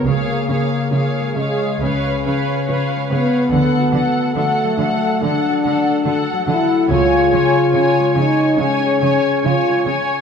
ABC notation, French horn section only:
X:1
M:4/4
L:1/8
Q:1/4=71
K:C#mix
V:1 name="French horn section"
A,3 G, C3 B,- | B,2 =A,2 =D3 =E | E3 D C2 E z |]